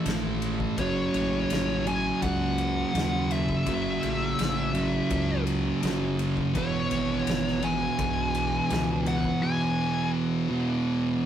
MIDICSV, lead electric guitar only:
0, 0, Header, 1, 2, 480
1, 0, Start_track
1, 0, Tempo, 719424
1, 525, Time_signature, 4, 2, 24, 8
1, 7511, End_track
2, 0, Start_track
2, 0, Title_t, "Lead electric guitar"
2, 0, Program_c, 0, 29
2, 530, Note_on_c, 0, 73, 88
2, 1249, Note_on_c, 0, 80, 101
2, 1272, Note_off_c, 0, 73, 0
2, 1483, Note_off_c, 0, 80, 0
2, 1485, Note_on_c, 0, 78, 100
2, 2214, Note_on_c, 0, 76, 93
2, 2230, Note_off_c, 0, 78, 0
2, 3627, Note_off_c, 0, 76, 0
2, 4387, Note_on_c, 0, 73, 86
2, 5098, Note_on_c, 0, 80, 117
2, 5121, Note_off_c, 0, 73, 0
2, 6051, Note_off_c, 0, 80, 0
2, 6054, Note_on_c, 0, 78, 94
2, 6289, Note_off_c, 0, 78, 0
2, 6291, Note_on_c, 0, 80, 92
2, 6742, Note_off_c, 0, 80, 0
2, 7511, End_track
0, 0, End_of_file